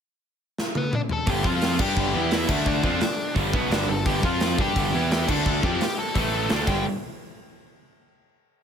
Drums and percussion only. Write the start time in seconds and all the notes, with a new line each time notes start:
0.58 snare
0.75 high tom
0.93 mid tom
1.09 floor tom
1.27 kick, open hi-hat
1.44 kick
1.61 snare, open hi-hat
1.79 kick, crash
1.97 kick
2.31 snare, open hi-hat
2.49 kick, crash
2.66 kick
2.83 kick
3.01 snare, open hi-hat
3.36 kick, open hi-hat
3.53 kick
3.71 snare, open hi-hat
4.06 kick, open hi-hat
4.23 kick
4.40 snare, open hi-hat
4.58 kick
4.76 kick, open hi-hat
5.11 snare, open hi-hat
5.29 kick, crash
5.46 kick
5.63 kick
5.81 snare, open hi-hat
6.15 kick, open hi-hat
6.49 snare, open hi-hat
6.67 kick, crash